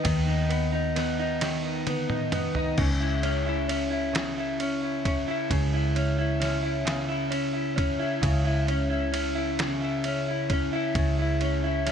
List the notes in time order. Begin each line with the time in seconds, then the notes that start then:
Already playing: B3 D#4
0.04 D#2 D#3, kick, ride
0.27 D#4
0.49 B3, ride
0.72 D#4
0.96 B3, snare, ride
1.19 D#4
1.41 D#3, snare, ride
1.65 D#4
1.87 B3, high tom, ride
2.10 D#4, mid tom
2.32 B3, mid tom, ride
2.55 D#4, floor tom
2.78 C#2 C#3, kick, crash
3.01 E4
3.23 C#4, ride
3.46 E4
3.69 C#4, ride
3.91 E4
4.13 C#3, snare, ride
4.38 E4
4.60 C#4, ride
4.83 E4
5.05 C#4, kick, ride
5.28 E4
5.51 C#2 C#3, kick, ride
5.74 E4
5.96 C#4, ride
6.19 E4
6.40 C#4, snare, ride
6.63 E4
6.85 C#3, snare, ride
7.09 E4
7.31 C#4, ride
7.53 E4
7.76 C#4, kick, ride
7.99 E4
8.22 C#2 C#3, kick, ride
8.45 E4
8.68 C#4, ride
8.90 E4
9.12 C#4, ride
9.35 E4
9.59 C#3, snare, ride
9.81 E4
10.04 C#4, ride
10.28 E4
10.50 C#4, kick, ride
10.73 E4
10.95 C#2 C#3, kick, ride
11.19 E4
11.41 C#4, ride
11.64 E4
11.86 C#4, snare, ride